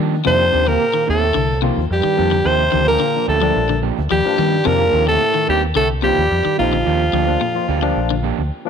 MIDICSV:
0, 0, Header, 1, 10, 480
1, 0, Start_track
1, 0, Tempo, 550459
1, 223, Time_signature, 4, 2, 24, 8
1, 7583, End_track
2, 0, Start_track
2, 0, Title_t, "Alto saxophone"
2, 0, Program_c, 0, 65
2, 234, Note_on_c, 0, 72, 105
2, 593, Note_on_c, 0, 70, 100
2, 606, Note_off_c, 0, 72, 0
2, 946, Note_off_c, 0, 70, 0
2, 955, Note_on_c, 0, 69, 88
2, 1395, Note_off_c, 0, 69, 0
2, 1680, Note_on_c, 0, 67, 91
2, 2150, Note_on_c, 0, 72, 105
2, 2163, Note_off_c, 0, 67, 0
2, 2506, Note_off_c, 0, 72, 0
2, 2511, Note_on_c, 0, 70, 104
2, 2840, Note_off_c, 0, 70, 0
2, 2867, Note_on_c, 0, 69, 87
2, 3311, Note_off_c, 0, 69, 0
2, 3588, Note_on_c, 0, 67, 101
2, 4066, Note_on_c, 0, 70, 113
2, 4079, Note_off_c, 0, 67, 0
2, 4427, Note_off_c, 0, 70, 0
2, 4432, Note_on_c, 0, 69, 105
2, 4761, Note_off_c, 0, 69, 0
2, 4793, Note_on_c, 0, 67, 93
2, 4899, Note_off_c, 0, 67, 0
2, 5025, Note_on_c, 0, 69, 102
2, 5133, Note_off_c, 0, 69, 0
2, 5265, Note_on_c, 0, 67, 107
2, 5711, Note_off_c, 0, 67, 0
2, 5746, Note_on_c, 0, 65, 85
2, 7392, Note_off_c, 0, 65, 0
2, 7583, End_track
3, 0, Start_track
3, 0, Title_t, "Clean electric guitar"
3, 0, Program_c, 1, 27
3, 0, Note_on_c, 1, 53, 59
3, 0, Note_on_c, 1, 58, 63
3, 0, Note_on_c, 1, 62, 65
3, 0, Note_on_c, 1, 67, 70
3, 128, Note_off_c, 1, 53, 0
3, 130, Note_off_c, 1, 58, 0
3, 130, Note_off_c, 1, 62, 0
3, 133, Note_off_c, 1, 67, 0
3, 223, Note_on_c, 1, 51, 70
3, 224, Note_on_c, 1, 58, 74
3, 228, Note_on_c, 1, 60, 82
3, 228, Note_on_c, 1, 67, 70
3, 369, Note_off_c, 1, 51, 0
3, 370, Note_off_c, 1, 58, 0
3, 372, Note_off_c, 1, 60, 0
3, 372, Note_off_c, 1, 67, 0
3, 456, Note_on_c, 1, 51, 60
3, 458, Note_on_c, 1, 58, 63
3, 462, Note_on_c, 1, 60, 67
3, 466, Note_on_c, 1, 67, 65
3, 568, Note_off_c, 1, 67, 0
3, 574, Note_off_c, 1, 60, 0
3, 578, Note_off_c, 1, 58, 0
3, 579, Note_on_c, 1, 67, 54
3, 582, Note_off_c, 1, 51, 0
3, 584, Note_on_c, 1, 60, 45
3, 589, Note_on_c, 1, 58, 39
3, 724, Note_off_c, 1, 67, 0
3, 726, Note_off_c, 1, 60, 0
3, 728, Note_off_c, 1, 58, 0
3, 933, Note_on_c, 1, 51, 62
3, 938, Note_on_c, 1, 58, 65
3, 943, Note_on_c, 1, 60, 67
3, 947, Note_on_c, 1, 67, 65
3, 1084, Note_off_c, 1, 51, 0
3, 1087, Note_off_c, 1, 58, 0
3, 1089, Note_off_c, 1, 60, 0
3, 1091, Note_off_c, 1, 67, 0
3, 1415, Note_on_c, 1, 51, 60
3, 1419, Note_on_c, 1, 58, 63
3, 1421, Note_on_c, 1, 60, 54
3, 1425, Note_on_c, 1, 67, 62
3, 1565, Note_off_c, 1, 51, 0
3, 1567, Note_off_c, 1, 58, 0
3, 1568, Note_off_c, 1, 60, 0
3, 1570, Note_off_c, 1, 67, 0
3, 1899, Note_on_c, 1, 51, 57
3, 1901, Note_on_c, 1, 58, 59
3, 1904, Note_on_c, 1, 60, 61
3, 1908, Note_on_c, 1, 67, 64
3, 2046, Note_off_c, 1, 51, 0
3, 2048, Note_off_c, 1, 58, 0
3, 2049, Note_off_c, 1, 60, 0
3, 2051, Note_off_c, 1, 67, 0
3, 2133, Note_on_c, 1, 53, 67
3, 2136, Note_on_c, 1, 58, 83
3, 2139, Note_on_c, 1, 62, 70
3, 2140, Note_on_c, 1, 67, 76
3, 2284, Note_off_c, 1, 53, 0
3, 2285, Note_off_c, 1, 58, 0
3, 2287, Note_off_c, 1, 62, 0
3, 2287, Note_off_c, 1, 67, 0
3, 2373, Note_on_c, 1, 53, 59
3, 2378, Note_on_c, 1, 58, 67
3, 2379, Note_on_c, 1, 62, 63
3, 2383, Note_on_c, 1, 67, 63
3, 2523, Note_off_c, 1, 53, 0
3, 2526, Note_off_c, 1, 58, 0
3, 2527, Note_off_c, 1, 62, 0
3, 2529, Note_off_c, 1, 67, 0
3, 2854, Note_on_c, 1, 53, 62
3, 2859, Note_on_c, 1, 58, 59
3, 2861, Note_on_c, 1, 62, 68
3, 2863, Note_on_c, 1, 67, 69
3, 2961, Note_off_c, 1, 67, 0
3, 2969, Note_off_c, 1, 62, 0
3, 2972, Note_on_c, 1, 67, 48
3, 2974, Note_off_c, 1, 58, 0
3, 2979, Note_on_c, 1, 62, 46
3, 2981, Note_off_c, 1, 53, 0
3, 2985, Note_on_c, 1, 58, 43
3, 3120, Note_off_c, 1, 67, 0
3, 3124, Note_off_c, 1, 62, 0
3, 3126, Note_off_c, 1, 58, 0
3, 3333, Note_on_c, 1, 53, 55
3, 3335, Note_on_c, 1, 58, 59
3, 3338, Note_on_c, 1, 62, 62
3, 3342, Note_on_c, 1, 67, 58
3, 3484, Note_off_c, 1, 53, 0
3, 3485, Note_off_c, 1, 58, 0
3, 3486, Note_off_c, 1, 62, 0
3, 3488, Note_off_c, 1, 67, 0
3, 3816, Note_on_c, 1, 53, 56
3, 3822, Note_on_c, 1, 58, 63
3, 3825, Note_on_c, 1, 62, 59
3, 3829, Note_on_c, 1, 67, 66
3, 3965, Note_off_c, 1, 53, 0
3, 3968, Note_off_c, 1, 58, 0
3, 3970, Note_off_c, 1, 62, 0
3, 3972, Note_off_c, 1, 67, 0
3, 4054, Note_on_c, 1, 51, 71
3, 4057, Note_on_c, 1, 58, 77
3, 4059, Note_on_c, 1, 60, 71
3, 4062, Note_on_c, 1, 67, 81
3, 4205, Note_off_c, 1, 51, 0
3, 4206, Note_off_c, 1, 58, 0
3, 4207, Note_off_c, 1, 60, 0
3, 4209, Note_off_c, 1, 67, 0
3, 4291, Note_on_c, 1, 51, 65
3, 4293, Note_on_c, 1, 58, 62
3, 4297, Note_on_c, 1, 60, 69
3, 4301, Note_on_c, 1, 67, 73
3, 4403, Note_off_c, 1, 67, 0
3, 4408, Note_off_c, 1, 60, 0
3, 4413, Note_off_c, 1, 58, 0
3, 4414, Note_on_c, 1, 67, 57
3, 4418, Note_on_c, 1, 60, 51
3, 4420, Note_off_c, 1, 51, 0
3, 4424, Note_on_c, 1, 58, 43
3, 4561, Note_off_c, 1, 67, 0
3, 4563, Note_off_c, 1, 60, 0
3, 4566, Note_off_c, 1, 58, 0
3, 4775, Note_on_c, 1, 51, 58
3, 4780, Note_on_c, 1, 58, 62
3, 4782, Note_on_c, 1, 60, 67
3, 4785, Note_on_c, 1, 67, 71
3, 4925, Note_off_c, 1, 51, 0
3, 4927, Note_off_c, 1, 58, 0
3, 4929, Note_off_c, 1, 60, 0
3, 4930, Note_off_c, 1, 67, 0
3, 5259, Note_on_c, 1, 51, 57
3, 5263, Note_on_c, 1, 58, 65
3, 5266, Note_on_c, 1, 60, 57
3, 5267, Note_on_c, 1, 67, 68
3, 5407, Note_off_c, 1, 51, 0
3, 5409, Note_off_c, 1, 58, 0
3, 5411, Note_off_c, 1, 60, 0
3, 5412, Note_off_c, 1, 67, 0
3, 5736, Note_on_c, 1, 51, 62
3, 5743, Note_on_c, 1, 58, 57
3, 5748, Note_on_c, 1, 60, 60
3, 5748, Note_on_c, 1, 67, 64
3, 5886, Note_off_c, 1, 51, 0
3, 5890, Note_off_c, 1, 58, 0
3, 5892, Note_off_c, 1, 60, 0
3, 5892, Note_off_c, 1, 67, 0
3, 5978, Note_on_c, 1, 53, 73
3, 5981, Note_on_c, 1, 58, 79
3, 5983, Note_on_c, 1, 62, 74
3, 5983, Note_on_c, 1, 67, 84
3, 6127, Note_off_c, 1, 53, 0
3, 6129, Note_off_c, 1, 58, 0
3, 6130, Note_off_c, 1, 62, 0
3, 6130, Note_off_c, 1, 67, 0
3, 6218, Note_on_c, 1, 53, 65
3, 6222, Note_on_c, 1, 58, 58
3, 6224, Note_on_c, 1, 62, 64
3, 6229, Note_on_c, 1, 67, 65
3, 6368, Note_off_c, 1, 53, 0
3, 6370, Note_off_c, 1, 58, 0
3, 6371, Note_off_c, 1, 62, 0
3, 6373, Note_off_c, 1, 67, 0
3, 6698, Note_on_c, 1, 53, 65
3, 6701, Note_on_c, 1, 58, 68
3, 6704, Note_on_c, 1, 62, 78
3, 6708, Note_on_c, 1, 67, 74
3, 6807, Note_off_c, 1, 67, 0
3, 6812, Note_off_c, 1, 62, 0
3, 6817, Note_off_c, 1, 58, 0
3, 6818, Note_on_c, 1, 67, 58
3, 6822, Note_on_c, 1, 62, 47
3, 6824, Note_off_c, 1, 53, 0
3, 6828, Note_on_c, 1, 58, 45
3, 6964, Note_off_c, 1, 67, 0
3, 6967, Note_off_c, 1, 62, 0
3, 6969, Note_off_c, 1, 58, 0
3, 7175, Note_on_c, 1, 53, 63
3, 7179, Note_on_c, 1, 58, 67
3, 7181, Note_on_c, 1, 62, 66
3, 7187, Note_on_c, 1, 67, 72
3, 7327, Note_off_c, 1, 53, 0
3, 7329, Note_off_c, 1, 58, 0
3, 7330, Note_off_c, 1, 62, 0
3, 7333, Note_off_c, 1, 67, 0
3, 7583, End_track
4, 0, Start_track
4, 0, Title_t, "Tine electric piano"
4, 0, Program_c, 2, 4
4, 111, Note_on_c, 2, 58, 73
4, 116, Note_on_c, 2, 62, 74
4, 153, Note_off_c, 2, 58, 0
4, 156, Note_off_c, 2, 62, 0
4, 221, Note_on_c, 2, 53, 75
4, 223, Note_on_c, 2, 58, 72
4, 229, Note_on_c, 2, 62, 87
4, 588, Note_off_c, 2, 53, 0
4, 589, Note_off_c, 2, 58, 0
4, 592, Note_off_c, 2, 62, 0
4, 1420, Note_on_c, 2, 53, 76
4, 1423, Note_on_c, 2, 58, 71
4, 1428, Note_on_c, 2, 65, 79
4, 1604, Note_off_c, 2, 53, 0
4, 1606, Note_off_c, 2, 58, 0
4, 1608, Note_off_c, 2, 65, 0
4, 1891, Note_on_c, 2, 53, 64
4, 1901, Note_on_c, 2, 62, 80
4, 1902, Note_on_c, 2, 58, 64
4, 2080, Note_off_c, 2, 53, 0
4, 2085, Note_off_c, 2, 58, 0
4, 2085, Note_off_c, 2, 62, 0
4, 2385, Note_on_c, 2, 58, 76
4, 2394, Note_on_c, 2, 62, 84
4, 2430, Note_off_c, 2, 58, 0
4, 2434, Note_off_c, 2, 62, 0
4, 2512, Note_on_c, 2, 53, 65
4, 2516, Note_on_c, 2, 58, 59
4, 2521, Note_on_c, 2, 62, 72
4, 2597, Note_off_c, 2, 53, 0
4, 2599, Note_off_c, 2, 58, 0
4, 2602, Note_off_c, 2, 62, 0
4, 2747, Note_on_c, 2, 53, 61
4, 2751, Note_on_c, 2, 58, 57
4, 2755, Note_on_c, 2, 62, 70
4, 2834, Note_off_c, 2, 53, 0
4, 2836, Note_off_c, 2, 58, 0
4, 2838, Note_off_c, 2, 62, 0
4, 2981, Note_on_c, 2, 53, 80
4, 2985, Note_on_c, 2, 55, 73
4, 2989, Note_on_c, 2, 62, 94
4, 3255, Note_off_c, 2, 53, 0
4, 3257, Note_off_c, 2, 55, 0
4, 3259, Note_off_c, 2, 62, 0
4, 3704, Note_on_c, 2, 53, 86
4, 3713, Note_on_c, 2, 58, 80
4, 3716, Note_on_c, 2, 62, 95
4, 3793, Note_off_c, 2, 53, 0
4, 3797, Note_off_c, 2, 58, 0
4, 3799, Note_off_c, 2, 62, 0
4, 3939, Note_on_c, 2, 58, 70
4, 3948, Note_on_c, 2, 62, 80
4, 3986, Note_off_c, 2, 58, 0
4, 3991, Note_off_c, 2, 62, 0
4, 4054, Note_on_c, 2, 53, 82
4, 4057, Note_on_c, 2, 58, 70
4, 4063, Note_on_c, 2, 62, 88
4, 4425, Note_off_c, 2, 53, 0
4, 4426, Note_off_c, 2, 58, 0
4, 4429, Note_off_c, 2, 62, 0
4, 5257, Note_on_c, 2, 53, 78
4, 5263, Note_on_c, 2, 58, 70
4, 5267, Note_on_c, 2, 65, 81
4, 5444, Note_off_c, 2, 53, 0
4, 5447, Note_off_c, 2, 58, 0
4, 5449, Note_off_c, 2, 65, 0
4, 5744, Note_on_c, 2, 58, 64
4, 5745, Note_on_c, 2, 53, 67
4, 5753, Note_on_c, 2, 63, 78
4, 5927, Note_off_c, 2, 58, 0
4, 5928, Note_off_c, 2, 53, 0
4, 5932, Note_off_c, 2, 63, 0
4, 6213, Note_on_c, 2, 58, 70
4, 6225, Note_on_c, 2, 62, 82
4, 6265, Note_off_c, 2, 58, 0
4, 6271, Note_off_c, 2, 62, 0
4, 6338, Note_on_c, 2, 53, 81
4, 6345, Note_on_c, 2, 58, 74
4, 6345, Note_on_c, 2, 62, 88
4, 6431, Note_off_c, 2, 53, 0
4, 6435, Note_off_c, 2, 58, 0
4, 6435, Note_off_c, 2, 62, 0
4, 6583, Note_on_c, 2, 53, 76
4, 6587, Note_on_c, 2, 58, 72
4, 6591, Note_on_c, 2, 65, 84
4, 6674, Note_off_c, 2, 53, 0
4, 6676, Note_off_c, 2, 58, 0
4, 6678, Note_off_c, 2, 65, 0
4, 6816, Note_on_c, 2, 53, 97
4, 6822, Note_on_c, 2, 58, 85
4, 6826, Note_on_c, 2, 62, 103
4, 7094, Note_off_c, 2, 53, 0
4, 7097, Note_off_c, 2, 58, 0
4, 7099, Note_off_c, 2, 62, 0
4, 7545, Note_on_c, 2, 53, 90
4, 7552, Note_on_c, 2, 58, 85
4, 7583, Note_off_c, 2, 53, 0
4, 7583, Note_off_c, 2, 58, 0
4, 7583, End_track
5, 0, Start_track
5, 0, Title_t, "Trombone"
5, 0, Program_c, 3, 57
5, 239, Note_on_c, 3, 60, 86
5, 589, Note_on_c, 3, 58, 87
5, 602, Note_off_c, 3, 60, 0
5, 922, Note_off_c, 3, 58, 0
5, 928, Note_on_c, 3, 57, 74
5, 1380, Note_off_c, 3, 57, 0
5, 1676, Note_on_c, 3, 55, 83
5, 2149, Note_on_c, 3, 60, 98
5, 2162, Note_off_c, 3, 55, 0
5, 2493, Note_off_c, 3, 60, 0
5, 2498, Note_on_c, 3, 58, 86
5, 2833, Note_off_c, 3, 58, 0
5, 2866, Note_on_c, 3, 57, 70
5, 3310, Note_off_c, 3, 57, 0
5, 3584, Note_on_c, 3, 55, 92
5, 4063, Note_on_c, 3, 58, 92
5, 4076, Note_off_c, 3, 55, 0
5, 4423, Note_off_c, 3, 58, 0
5, 4428, Note_on_c, 3, 57, 83
5, 4759, Note_off_c, 3, 57, 0
5, 4787, Note_on_c, 3, 55, 72
5, 4894, Note_off_c, 3, 55, 0
5, 5028, Note_on_c, 3, 57, 81
5, 5135, Note_off_c, 3, 57, 0
5, 5281, Note_on_c, 3, 55, 90
5, 5720, Note_off_c, 3, 55, 0
5, 5760, Note_on_c, 3, 53, 74
5, 7399, Note_off_c, 3, 53, 0
5, 7583, End_track
6, 0, Start_track
6, 0, Title_t, "Clean electric guitar"
6, 0, Program_c, 4, 27
6, 0, Note_on_c, 4, 55, 71
6, 133, Note_off_c, 4, 55, 0
6, 216, Note_on_c, 4, 48, 92
6, 373, Note_off_c, 4, 48, 0
6, 580, Note_on_c, 4, 50, 65
6, 737, Note_off_c, 4, 50, 0
6, 816, Note_on_c, 4, 51, 65
6, 974, Note_off_c, 4, 51, 0
6, 1171, Note_on_c, 4, 50, 82
6, 1330, Note_off_c, 4, 50, 0
6, 1412, Note_on_c, 4, 48, 75
6, 1571, Note_off_c, 4, 48, 0
6, 1774, Note_on_c, 4, 51, 68
6, 1933, Note_off_c, 4, 51, 0
6, 2017, Note_on_c, 4, 50, 74
6, 2175, Note_off_c, 4, 50, 0
6, 2371, Note_on_c, 4, 51, 73
6, 2529, Note_off_c, 4, 51, 0
6, 2614, Note_on_c, 4, 50, 80
6, 2772, Note_off_c, 4, 50, 0
6, 2978, Note_on_c, 4, 53, 73
6, 3136, Note_off_c, 4, 53, 0
6, 3221, Note_on_c, 4, 50, 70
6, 3378, Note_off_c, 4, 50, 0
6, 3581, Note_on_c, 4, 53, 84
6, 3737, Note_off_c, 4, 53, 0
6, 3823, Note_on_c, 4, 55, 75
6, 3978, Note_off_c, 4, 55, 0
6, 4055, Note_on_c, 4, 48, 94
6, 4213, Note_off_c, 4, 48, 0
6, 4421, Note_on_c, 4, 50, 72
6, 4578, Note_off_c, 4, 50, 0
6, 4659, Note_on_c, 4, 51, 67
6, 4817, Note_off_c, 4, 51, 0
6, 5015, Note_on_c, 4, 50, 93
6, 5173, Note_off_c, 4, 50, 0
6, 5252, Note_on_c, 4, 48, 76
6, 5411, Note_off_c, 4, 48, 0
6, 5622, Note_on_c, 4, 51, 65
6, 5779, Note_off_c, 4, 51, 0
6, 5866, Note_on_c, 4, 50, 75
6, 6022, Note_off_c, 4, 50, 0
6, 6222, Note_on_c, 4, 53, 68
6, 6378, Note_off_c, 4, 53, 0
6, 6461, Note_on_c, 4, 46, 82
6, 6618, Note_off_c, 4, 46, 0
6, 7067, Note_on_c, 4, 50, 72
6, 7223, Note_off_c, 4, 50, 0
6, 7583, End_track
7, 0, Start_track
7, 0, Title_t, "Trombone section"
7, 0, Program_c, 5, 61
7, 230, Note_on_c, 5, 48, 85
7, 564, Note_off_c, 5, 48, 0
7, 593, Note_on_c, 5, 46, 81
7, 944, Note_on_c, 5, 45, 72
7, 946, Note_off_c, 5, 46, 0
7, 1389, Note_off_c, 5, 45, 0
7, 1675, Note_on_c, 5, 43, 76
7, 2115, Note_off_c, 5, 43, 0
7, 2150, Note_on_c, 5, 48, 89
7, 2509, Note_off_c, 5, 48, 0
7, 2516, Note_on_c, 5, 46, 86
7, 2843, Note_off_c, 5, 46, 0
7, 2872, Note_on_c, 5, 45, 76
7, 3313, Note_off_c, 5, 45, 0
7, 3584, Note_on_c, 5, 43, 84
7, 4029, Note_off_c, 5, 43, 0
7, 4054, Note_on_c, 5, 46, 99
7, 4421, Note_off_c, 5, 46, 0
7, 4423, Note_on_c, 5, 45, 83
7, 4756, Note_off_c, 5, 45, 0
7, 4790, Note_on_c, 5, 43, 77
7, 4896, Note_off_c, 5, 43, 0
7, 5026, Note_on_c, 5, 45, 85
7, 5133, Note_off_c, 5, 45, 0
7, 5267, Note_on_c, 5, 43, 81
7, 5712, Note_off_c, 5, 43, 0
7, 5750, Note_on_c, 5, 41, 72
7, 7394, Note_off_c, 5, 41, 0
7, 7583, End_track
8, 0, Start_track
8, 0, Title_t, "Fingered electric bass"
8, 0, Program_c, 6, 33
8, 0, Note_on_c, 6, 51, 80
8, 181, Note_off_c, 6, 51, 0
8, 232, Note_on_c, 6, 41, 100
8, 426, Note_off_c, 6, 41, 0
8, 469, Note_on_c, 6, 39, 85
8, 664, Note_off_c, 6, 39, 0
8, 952, Note_on_c, 6, 39, 84
8, 1145, Note_off_c, 6, 39, 0
8, 1184, Note_on_c, 6, 36, 89
8, 1481, Note_off_c, 6, 36, 0
8, 1546, Note_on_c, 6, 39, 88
8, 1642, Note_off_c, 6, 39, 0
8, 1661, Note_on_c, 6, 41, 89
8, 1762, Note_off_c, 6, 41, 0
8, 1907, Note_on_c, 6, 41, 78
8, 2102, Note_off_c, 6, 41, 0
8, 2141, Note_on_c, 6, 39, 99
8, 2338, Note_off_c, 6, 39, 0
8, 2387, Note_on_c, 6, 38, 85
8, 2582, Note_off_c, 6, 38, 0
8, 2861, Note_on_c, 6, 38, 86
8, 3058, Note_off_c, 6, 38, 0
8, 3105, Note_on_c, 6, 34, 98
8, 3402, Note_off_c, 6, 34, 0
8, 3474, Note_on_c, 6, 38, 85
8, 3566, Note_off_c, 6, 38, 0
8, 3588, Note_on_c, 6, 39, 88
8, 3687, Note_off_c, 6, 39, 0
8, 3825, Note_on_c, 6, 51, 82
8, 4021, Note_off_c, 6, 51, 0
8, 4067, Note_on_c, 6, 41, 102
8, 4262, Note_off_c, 6, 41, 0
8, 4302, Note_on_c, 6, 39, 85
8, 4499, Note_off_c, 6, 39, 0
8, 4784, Note_on_c, 6, 39, 88
8, 4981, Note_off_c, 6, 39, 0
8, 5021, Note_on_c, 6, 36, 97
8, 5320, Note_off_c, 6, 36, 0
8, 5387, Note_on_c, 6, 39, 86
8, 5483, Note_off_c, 6, 39, 0
8, 5507, Note_on_c, 6, 41, 90
8, 5606, Note_off_c, 6, 41, 0
8, 5751, Note_on_c, 6, 34, 78
8, 5945, Note_off_c, 6, 34, 0
8, 5987, Note_on_c, 6, 39, 95
8, 6183, Note_off_c, 6, 39, 0
8, 6218, Note_on_c, 6, 38, 84
8, 6418, Note_off_c, 6, 38, 0
8, 6701, Note_on_c, 6, 38, 81
8, 6900, Note_off_c, 6, 38, 0
8, 6941, Note_on_c, 6, 34, 92
8, 7242, Note_off_c, 6, 34, 0
8, 7311, Note_on_c, 6, 38, 79
8, 7406, Note_off_c, 6, 38, 0
8, 7583, End_track
9, 0, Start_track
9, 0, Title_t, "Muted clean electric guitar strokes"
9, 6825, Note_on_c, 9, 29, 69
9, 6912, Note_off_c, 9, 29, 0
9, 7583, End_track
10, 0, Start_track
10, 0, Title_t, "Muted fingered electric bass strokes"
10, 1789, Note_on_c, 9, 29, 37
10, 1876, Note_off_c, 9, 29, 0
10, 5632, Note_on_c, 9, 29, 38
10, 5720, Note_off_c, 9, 29, 0
10, 7583, End_track
0, 0, End_of_file